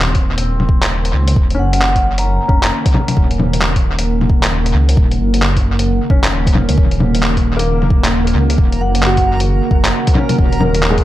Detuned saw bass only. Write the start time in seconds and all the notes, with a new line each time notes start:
Already playing: D#1
1.14 C#2
1.36 D#1
1.59 F#1
2.49 F1
3.17 D#1
4.75 C#2
4.97 D#1
5.20 F#1
6.10 F1
6.33 D#1
6.69 C#2
6.77 D#1
8.35 C#2
8.58 D#1
8.80 F#1
9.71 F1
10.38 D#1